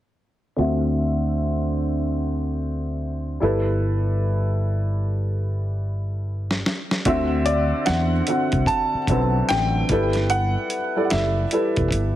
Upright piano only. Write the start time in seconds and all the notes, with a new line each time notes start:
0.56 D3 C4 F#4 E5
3.40 G3 E4 A4 B4
7.06 D3 C4 F#4 E5
8.28 D3 C4 F#4 F#5
9.09 D3 F#3 C4 B4
9.90 G3 E4 A4 B4
10.96 G3 E4 A4 D5
11.52 G3 E4 A4 B4